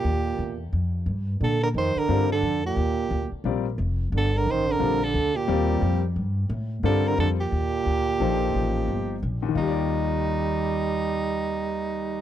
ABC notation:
X:1
M:4/4
L:1/8
Q:"Swing" 1/4=177
K:Eblyd
V:1 name="Soprano saxophone"
G3 z4 z | A B c B2 A2 G- | G3 z4 z | A B c B2 A2 G- |
G3 z4 z | A B A G4- G- | G6 z2 | E8- |
E8 |]
V:2 name="Grand piano"
z8 | z4 [G,CFBd] z3 | z4 [G,CFBd] z3 | z4 [G,CFBd] z3 |
[G,CFBd]3 z4 z | [G,CFBd]3 z4 z | [F,B,EAc]4- [F,B,EAc] z3 | [E,,E,FGd]8- |
[E,,E,FGd]8 |]
V:3 name="Trombone" clef=bass
B,,3 z4 z | D, D, E, D,2 D,2 B,,- | B,,3 z4 z | D, D, E, D,2 D,2 B,,- |
B,,3 z4 z | D, D, D, B,,4- B,,- | B,,6 z2 | G,8- |
G,8 |]
V:4 name="Upright bass" clef=bass
E,,2 _F,,2 =F,,2 G,,2 | B,,2 F,, z G,,2 F,,2 | E,,2 D,, z B,,,2 F,,,2 | G,,,2 A,,,2 B,,,2 D,,2 |
E,,2 F,,2 G,,2 A,,2 | G,,2 F,,2 E,,2 D,,2 | B,,,2 A,,,2 G,,,2 B,,,2 | E,,8- |
E,,8 |]